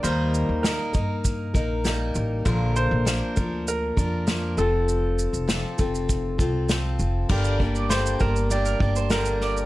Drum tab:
CC |----------------|----------------|----------------|x---------------|
SH |x-x-x-x-x-x-x-x-|x-x-x-x-x-x-x-x-|x-xxx-xxx-x-x-x-|-x-xxxxxxx-xxx-x|
SD |----o-------o---|----o-------o---|----o-------o---|----o-------o-o-|
BD |------o-o-o-----|o-----o---o-----|------o-o-o-----|o-o---o---o-----|